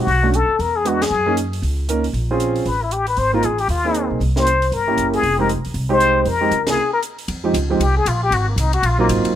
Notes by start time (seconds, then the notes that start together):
0.00 F#4
0.07 B1, open hi-hat
0.23 A3 C#4 D4 F#4
0.34 A4, closed hi-hat
0.48 muted upright bass stroke
0.59 E2 A#4, open hi-hat
0.76 G#4
0.85 G#3 B3 D4 F#4, closed hi-hat
1.02 G#4, snare, ride
1.11 F#2
1.26 A#3 C#4 D#4 G#4
1.37 closed hi-hat
1.53 open hi-hat
1.62 C#2, open hi-hat
1.89 A#3 C#4 D#4 A#4, closed hi-hat
2.04 open hi-hat
2.13 A#1, open hi-hat
2.31 C4 C#4 F4 G#4
2.40 closed hi-hat
2.56 open hi-hat
2.66 A1 B4, open hi-hat
2.82 E4
2.91 G4, closed hi-hat
3.07 B4, open hi-hat
3.17 G#1 C5, open hi-hat
3.33 A#3 C4 D#4 F4 A#4
3.43 A1 G#4, closed hi-hat
3.58 G4, open hi-hat
3.68 D#2 F4, open hi-hat
3.85 A#3 C4 D#4 G#4
3.95 closed hi-hat
4.10 B1
4.20 C2, open hi-hat
4.36 A#3 C#4 E4 G4 C5, snare
4.47 closed hi-hat
4.62 open hi-hat
4.72 G1 A#4, open hi-hat
4.87 A#3 C#4 E4 G4
4.97 F#1, closed hi-hat
5.14 G#4, open hi-hat
5.23 F1, open hi-hat
5.38 G#3 C4 D#4 G4 A#4
5.49 closed hi-hat
5.57 C2
5.65 D#2, open hi-hat
5.74 C2, open hi-hat
5.89 G#3 C4 D#4 G4 C5
6.00 closed hi-hat
6.25 F2 A#4, open hi-hat
6.41 G#3 C4 D#4 G4
6.51 C#2, closed hi-hat
6.66 C3 A#3 C#4 E4 G#4 A#4, snare, ride
6.93 A#4
7.03 closed hi-hat
7.19 open hi-hat
7.28 F2, ride
7.44 F3 G#3 C4 D#4 G4
7.54 C#2, hi-hat pedal, ride
7.70 F3 G#3 C4 D#4 G4
7.80 C2 G4, ride
7.97 G#4
8.05 A#1 F4, hi-hat pedal, ride
8.24 G4
8.31 G#1 F#4, ride
8.49 A#3
8.56 C2 D#4, hi-hat pedal, ride
8.73 F#4, ride
8.82 A#1 F4, ride
8.98 F#3 A#3 C4 D#4 F4
9.09 G#1, hi-hat pedal, ride
9.25 muted upright bass stroke, ride